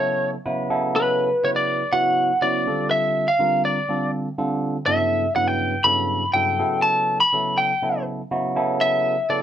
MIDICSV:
0, 0, Header, 1, 3, 480
1, 0, Start_track
1, 0, Tempo, 491400
1, 916, Time_signature, 4, 2, 24, 8
1, 9206, End_track
2, 0, Start_track
2, 0, Title_t, "Lead electric guitar"
2, 0, Program_c, 0, 29
2, 0, Note_on_c, 0, 73, 88
2, 289, Note_off_c, 0, 73, 0
2, 939, Note_on_c, 0, 71, 91
2, 1412, Note_on_c, 0, 73, 85
2, 1421, Note_off_c, 0, 71, 0
2, 1461, Note_off_c, 0, 73, 0
2, 1524, Note_on_c, 0, 74, 92
2, 1881, Note_on_c, 0, 78, 100
2, 1889, Note_off_c, 0, 74, 0
2, 2366, Note_on_c, 0, 74, 82
2, 2372, Note_off_c, 0, 78, 0
2, 2807, Note_off_c, 0, 74, 0
2, 2840, Note_on_c, 0, 76, 93
2, 3203, Note_on_c, 0, 77, 95
2, 3210, Note_off_c, 0, 76, 0
2, 3532, Note_off_c, 0, 77, 0
2, 3565, Note_on_c, 0, 74, 70
2, 4006, Note_off_c, 0, 74, 0
2, 4750, Note_on_c, 0, 76, 89
2, 5229, Note_off_c, 0, 76, 0
2, 5233, Note_on_c, 0, 78, 75
2, 5349, Note_off_c, 0, 78, 0
2, 5349, Note_on_c, 0, 79, 80
2, 5705, Note_on_c, 0, 83, 92
2, 5721, Note_off_c, 0, 79, 0
2, 6156, Note_off_c, 0, 83, 0
2, 6188, Note_on_c, 0, 79, 81
2, 6637, Note_off_c, 0, 79, 0
2, 6665, Note_on_c, 0, 81, 97
2, 7033, Note_off_c, 0, 81, 0
2, 7037, Note_on_c, 0, 83, 99
2, 7400, Note_on_c, 0, 79, 79
2, 7405, Note_off_c, 0, 83, 0
2, 7844, Note_off_c, 0, 79, 0
2, 8607, Note_on_c, 0, 76, 106
2, 9083, Note_on_c, 0, 74, 81
2, 9096, Note_off_c, 0, 76, 0
2, 9194, Note_off_c, 0, 74, 0
2, 9206, End_track
3, 0, Start_track
3, 0, Title_t, "Tine electric piano"
3, 0, Program_c, 1, 4
3, 0, Note_on_c, 1, 49, 78
3, 0, Note_on_c, 1, 54, 66
3, 0, Note_on_c, 1, 59, 72
3, 0, Note_on_c, 1, 64, 72
3, 0, Note_on_c, 1, 69, 83
3, 336, Note_off_c, 1, 49, 0
3, 337, Note_off_c, 1, 54, 0
3, 339, Note_off_c, 1, 59, 0
3, 341, Note_off_c, 1, 64, 0
3, 342, Note_off_c, 1, 69, 0
3, 443, Note_on_c, 1, 49, 88
3, 444, Note_on_c, 1, 64, 84
3, 445, Note_on_c, 1, 54, 80
3, 446, Note_on_c, 1, 59, 82
3, 446, Note_on_c, 1, 71, 99
3, 669, Note_off_c, 1, 49, 0
3, 675, Note_off_c, 1, 59, 0
3, 676, Note_off_c, 1, 54, 0
3, 676, Note_off_c, 1, 64, 0
3, 681, Note_off_c, 1, 71, 0
3, 681, Note_on_c, 1, 49, 82
3, 686, Note_on_c, 1, 59, 82
3, 687, Note_on_c, 1, 54, 73
3, 687, Note_on_c, 1, 64, 73
3, 687, Note_on_c, 1, 69, 102
3, 1256, Note_off_c, 1, 49, 0
3, 1259, Note_off_c, 1, 54, 0
3, 1259, Note_off_c, 1, 59, 0
3, 1259, Note_off_c, 1, 64, 0
3, 1259, Note_off_c, 1, 69, 0
3, 1401, Note_on_c, 1, 49, 74
3, 1402, Note_on_c, 1, 54, 67
3, 1405, Note_on_c, 1, 59, 70
3, 1406, Note_on_c, 1, 64, 65
3, 1409, Note_on_c, 1, 71, 81
3, 1774, Note_off_c, 1, 49, 0
3, 1774, Note_off_c, 1, 54, 0
3, 1776, Note_off_c, 1, 59, 0
3, 1777, Note_off_c, 1, 64, 0
3, 1778, Note_off_c, 1, 71, 0
3, 1876, Note_on_c, 1, 49, 68
3, 1877, Note_on_c, 1, 54, 73
3, 1880, Note_on_c, 1, 59, 72
3, 1883, Note_on_c, 1, 64, 68
3, 1883, Note_on_c, 1, 66, 84
3, 2251, Note_off_c, 1, 49, 0
3, 2252, Note_off_c, 1, 54, 0
3, 2253, Note_off_c, 1, 59, 0
3, 2255, Note_off_c, 1, 64, 0
3, 2255, Note_off_c, 1, 66, 0
3, 2359, Note_on_c, 1, 49, 81
3, 2360, Note_on_c, 1, 54, 67
3, 2363, Note_on_c, 1, 66, 78
3, 2364, Note_on_c, 1, 59, 69
3, 2364, Note_on_c, 1, 64, 65
3, 2597, Note_off_c, 1, 49, 0
3, 2597, Note_off_c, 1, 54, 0
3, 2599, Note_off_c, 1, 59, 0
3, 2599, Note_off_c, 1, 64, 0
3, 2599, Note_off_c, 1, 66, 0
3, 2604, Note_on_c, 1, 50, 72
3, 2604, Note_on_c, 1, 55, 63
3, 2608, Note_on_c, 1, 60, 65
3, 2609, Note_on_c, 1, 65, 64
3, 2612, Note_on_c, 1, 69, 77
3, 3177, Note_off_c, 1, 50, 0
3, 3177, Note_off_c, 1, 55, 0
3, 3179, Note_off_c, 1, 60, 0
3, 3179, Note_off_c, 1, 65, 0
3, 3181, Note_off_c, 1, 69, 0
3, 3312, Note_on_c, 1, 50, 74
3, 3316, Note_on_c, 1, 60, 65
3, 3318, Note_on_c, 1, 55, 67
3, 3320, Note_on_c, 1, 70, 80
3, 3321, Note_on_c, 1, 65, 66
3, 3689, Note_off_c, 1, 50, 0
3, 3691, Note_off_c, 1, 60, 0
3, 3692, Note_off_c, 1, 55, 0
3, 3693, Note_off_c, 1, 65, 0
3, 3693, Note_off_c, 1, 70, 0
3, 3795, Note_on_c, 1, 50, 70
3, 3798, Note_on_c, 1, 60, 71
3, 3800, Note_on_c, 1, 55, 69
3, 3803, Note_on_c, 1, 65, 66
3, 3807, Note_on_c, 1, 69, 84
3, 4170, Note_off_c, 1, 50, 0
3, 4172, Note_off_c, 1, 55, 0
3, 4172, Note_off_c, 1, 60, 0
3, 4174, Note_off_c, 1, 65, 0
3, 4176, Note_off_c, 1, 69, 0
3, 4277, Note_on_c, 1, 50, 93
3, 4279, Note_on_c, 1, 55, 82
3, 4282, Note_on_c, 1, 60, 78
3, 4282, Note_on_c, 1, 65, 76
3, 4284, Note_on_c, 1, 69, 96
3, 4651, Note_off_c, 1, 50, 0
3, 4652, Note_off_c, 1, 55, 0
3, 4653, Note_off_c, 1, 60, 0
3, 4653, Note_off_c, 1, 65, 0
3, 4655, Note_off_c, 1, 69, 0
3, 4749, Note_on_c, 1, 43, 75
3, 4753, Note_on_c, 1, 54, 70
3, 4754, Note_on_c, 1, 49, 69
3, 4754, Note_on_c, 1, 59, 72
3, 4756, Note_on_c, 1, 64, 62
3, 4756, Note_on_c, 1, 69, 85
3, 5127, Note_off_c, 1, 43, 0
3, 5129, Note_off_c, 1, 54, 0
3, 5129, Note_off_c, 1, 59, 0
3, 5130, Note_off_c, 1, 49, 0
3, 5131, Note_off_c, 1, 64, 0
3, 5131, Note_off_c, 1, 69, 0
3, 5232, Note_on_c, 1, 54, 69
3, 5232, Note_on_c, 1, 59, 68
3, 5233, Note_on_c, 1, 43, 78
3, 5233, Note_on_c, 1, 49, 68
3, 5236, Note_on_c, 1, 64, 69
3, 5237, Note_on_c, 1, 71, 85
3, 5608, Note_off_c, 1, 54, 0
3, 5609, Note_off_c, 1, 43, 0
3, 5609, Note_off_c, 1, 49, 0
3, 5609, Note_off_c, 1, 59, 0
3, 5611, Note_off_c, 1, 64, 0
3, 5611, Note_off_c, 1, 71, 0
3, 5703, Note_on_c, 1, 43, 76
3, 5707, Note_on_c, 1, 49, 71
3, 5707, Note_on_c, 1, 54, 71
3, 5707, Note_on_c, 1, 59, 73
3, 5710, Note_on_c, 1, 64, 67
3, 5711, Note_on_c, 1, 69, 85
3, 6084, Note_off_c, 1, 43, 0
3, 6086, Note_off_c, 1, 49, 0
3, 6086, Note_off_c, 1, 54, 0
3, 6086, Note_off_c, 1, 59, 0
3, 6088, Note_off_c, 1, 64, 0
3, 6088, Note_off_c, 1, 69, 0
3, 6191, Note_on_c, 1, 43, 68
3, 6192, Note_on_c, 1, 54, 67
3, 6193, Note_on_c, 1, 49, 68
3, 6196, Note_on_c, 1, 59, 69
3, 6199, Note_on_c, 1, 64, 68
3, 6199, Note_on_c, 1, 69, 78
3, 6420, Note_off_c, 1, 49, 0
3, 6422, Note_off_c, 1, 54, 0
3, 6425, Note_off_c, 1, 59, 0
3, 6428, Note_off_c, 1, 64, 0
3, 6428, Note_off_c, 1, 69, 0
3, 6431, Note_on_c, 1, 49, 70
3, 6432, Note_off_c, 1, 43, 0
3, 6434, Note_on_c, 1, 54, 65
3, 6437, Note_on_c, 1, 59, 65
3, 6440, Note_on_c, 1, 64, 66
3, 6440, Note_on_c, 1, 69, 79
3, 7011, Note_off_c, 1, 49, 0
3, 7012, Note_off_c, 1, 54, 0
3, 7013, Note_off_c, 1, 59, 0
3, 7015, Note_off_c, 1, 64, 0
3, 7015, Note_off_c, 1, 69, 0
3, 7155, Note_on_c, 1, 49, 75
3, 7156, Note_on_c, 1, 54, 71
3, 7163, Note_on_c, 1, 59, 65
3, 7163, Note_on_c, 1, 64, 65
3, 7163, Note_on_c, 1, 69, 85
3, 7531, Note_off_c, 1, 49, 0
3, 7531, Note_off_c, 1, 54, 0
3, 7534, Note_off_c, 1, 59, 0
3, 7535, Note_off_c, 1, 64, 0
3, 7535, Note_off_c, 1, 69, 0
3, 7638, Note_on_c, 1, 49, 77
3, 7640, Note_on_c, 1, 54, 65
3, 7644, Note_on_c, 1, 59, 69
3, 7647, Note_on_c, 1, 64, 75
3, 7649, Note_on_c, 1, 69, 78
3, 8013, Note_off_c, 1, 49, 0
3, 8013, Note_off_c, 1, 54, 0
3, 8015, Note_off_c, 1, 59, 0
3, 8017, Note_off_c, 1, 64, 0
3, 8018, Note_off_c, 1, 69, 0
3, 8116, Note_on_c, 1, 49, 91
3, 8119, Note_on_c, 1, 59, 81
3, 8120, Note_on_c, 1, 54, 84
3, 8122, Note_on_c, 1, 64, 81
3, 8124, Note_on_c, 1, 66, 94
3, 8346, Note_off_c, 1, 54, 0
3, 8349, Note_off_c, 1, 49, 0
3, 8352, Note_off_c, 1, 59, 0
3, 8352, Note_off_c, 1, 64, 0
3, 8358, Note_on_c, 1, 54, 77
3, 8359, Note_off_c, 1, 66, 0
3, 8361, Note_on_c, 1, 49, 83
3, 8363, Note_on_c, 1, 64, 82
3, 8364, Note_on_c, 1, 59, 79
3, 8367, Note_on_c, 1, 69, 99
3, 8935, Note_off_c, 1, 54, 0
3, 8936, Note_off_c, 1, 49, 0
3, 8938, Note_off_c, 1, 59, 0
3, 8938, Note_off_c, 1, 64, 0
3, 8939, Note_off_c, 1, 69, 0
3, 9076, Note_on_c, 1, 49, 73
3, 9077, Note_on_c, 1, 54, 65
3, 9082, Note_on_c, 1, 59, 68
3, 9083, Note_on_c, 1, 69, 87
3, 9084, Note_on_c, 1, 64, 67
3, 9206, Note_off_c, 1, 49, 0
3, 9206, Note_off_c, 1, 54, 0
3, 9206, Note_off_c, 1, 59, 0
3, 9206, Note_off_c, 1, 64, 0
3, 9206, Note_off_c, 1, 69, 0
3, 9206, End_track
0, 0, End_of_file